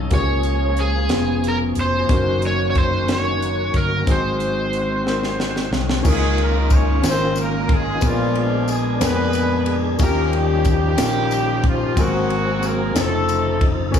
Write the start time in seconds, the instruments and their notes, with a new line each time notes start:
Already playing: string section F#3 A3 C#4 D#4, tonewheel organ F#3 C#4 D#4 A4, grand piano C#4 D#4 F#4 A4
0.11 fingered electric bass C#2, grand piano C#3 A#3 C#4 F4 G4, tonewheel organ F3 A#3 C#4 G#4, string section G#3 A#3 F4, kick, closed hi-hat
0.15 electric slide guitar C#5
0.20 grand piano G#4
0.43 closed hi-hat
0.77 electric slide guitar G#4, closed hi-hat
1.09 fingered electric bass F1, tonewheel organ B2 F3 C#4 G#4, string section B2 C#4, grand piano B3 C#4 F4 G#4, snare, closed hi-hat
1.44 closed hi-hat
1.48 electric slide guitar A#4
1.75 fingered electric bass F1, closed hi-hat
1.80 electric slide guitar C5
2.08 fingered electric bass F#1, tonewheel organ D#3 A#3 C#4 F#4, string section F#3 A#3 D#4, grand piano C#4 D#4 F#4 A#4, kick, closed hi-hat
2.42 closed hi-hat
2.47 electric slide guitar C#5
2.70 electric slide guitar C#5
2.75 electric slide guitar C5, kick, closed hi-hat
3.07 grand piano C#4 D#4 F#4 A#4, snare, closed hi-hat
3.13 electric slide guitar C#5
3.42 closed hi-hat
3.74 fingered electric bass G1, electric slide guitar A#4, kick, closed hi-hat
4.06 fingered electric bass G#1, grand piano G#2 C4 D#4 F#4 G#4, tonewheel organ D#3 G#3 C4 F#4, string section G#3 C4, kick, closed hi-hat
4.11 electric slide guitar C5
4.40 closed hi-hat
4.73 closed hi-hat
5.04 grand piano C4 D#4 F#4 A#4, snare
5.23 snare
5.40 snare
5.56 snare
5.71 fingered electric bass C2, snare
5.89 snare
6.03 fingered electric bass C#2, grand piano C#3 C#4 D#4 F4 A#4, tonewheel organ D#3 A#3 C#4 E4, kick, crash, tambourine
6.08 horn section G#3 D#4 F4 G#4, tonewheel organ F4
6.38 ride bell
6.43 horn section A#3 A#4
6.70 kick, ride bell, tambourine
6.75 horn section C#4 C#5
7.02 fingered electric bass G#1, grand piano C#4 D#4 F4 G#4, snare, ride bell, tambourine
7.07 horn section C4 C5
7.12 grand piano A#4
7.36 ride bell, tambourine
7.41 horn section A#3 A#4
7.69 kick, ride bell
7.74 horn section G#3 G#4
8.01 fingered electric bass A#1, grand piano A#2 B3 C#4 G#4 A#4, tonewheel organ G#3 D4 A4, kick, ride bell, tambourine
8.05 horn section F3 G#3 D4 F4, grand piano D4, tonewheel organ G#4
8.35 horn section F3 F4, ride bell
8.68 ride bell, tambourine
8.72 horn section G#3 G#4
8.99 fingered electric bass F2, grand piano A#3 B3 D4 G#4, horn section D4 G#4, snare, ride bell, tambourine
9.04 horn section B3 B4
9.33 ride bell, tambourine
9.66 ride bell
9.99 fingered electric bass D#2, grand piano D#3 C#4 D#4 F4 G4, tonewheel organ F3 C#4 D#4 F#4, horn section A#3 C#4 G4 A#4, kick, ride bell, tambourine
10.06 tonewheel organ G4
10.33 horn section G3 G4, ride bell
10.65 horn section C#4, kick, ride bell, tambourine
10.69 horn section G3 A#3 G4
10.97 fingered electric bass A#1, grand piano C#4 D#4 F4 A#4, snare, ride bell, tambourine
11.31 ride bell, tambourine
11.64 kick, ride bell
11.68 horn section F3 F4
11.96 fingered electric bass G#1, grand piano G#2 C4 F#4 G#4 A#4, tonewheel organ F#3 A#3 C4 G4, kick, ride bell, tambourine
12.00 horn section F#3 A#3 C4 F#4
12.05 tonewheel organ G#4
12.30 ride bell
12.63 horn section A#3 A#4, ride bell, tambourine
12.94 fingered electric bass F1, tonewheel organ C#3 F3 D#4 A4, grand piano D#4 F4 A4 C5, snare, ride bell, tambourine
13.00 horn section A3 C4 D#4 A4, grand piano C5
13.29 ride bell, tambourine
13.61 kick, ride bell
13.92 fingered electric bass A#1, grand piano A#2 C#4 G#4 A#4 C5, tonewheel organ A#3 C#4 G#4 A#4, kick, ride bell, tambourine